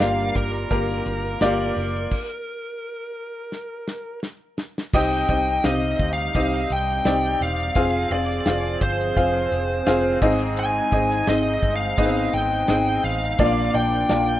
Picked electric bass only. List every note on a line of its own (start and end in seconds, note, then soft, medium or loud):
0.00 0.29 G1 loud
0.36 0.64 G1 medium
0.71 1.00 G1 medium
1.06 1.35 G1 medium
1.41 1.70 G1 medium
1.76 2.05 F#1 medium
4.94 5.22 C2 loud
5.29 5.58 C2 medium
5.64 5.93 C2 loud
6.00 6.28 D2 medium
6.35 6.64 C2 medium
6.70 6.99 C2 medium
7.05 7.34 C2 medium
7.41 7.69 E1 medium
7.76 8.05 F1 medium
8.11 8.39 F1 medium
8.46 8.75 F1 medium
8.81 9.10 G1 medium
9.17 9.45 F1 medium
9.52 9.80 F1 medium
9.87 10.16 F1 medium
10.22 10.80 G#1 loud
10.92 11.21 G#1 medium
11.27 11.56 G#1 loud
11.63 11.92 G1 medium
11.98 12.27 G#1 medium
12.34 12.62 G#1 medium
12.69 12.98 G#1 medium
13.04 13.33 A1 medium
13.39 13.68 A#1 loud
13.74 14.03 A#1 medium
14.10 14.39 A#1 medium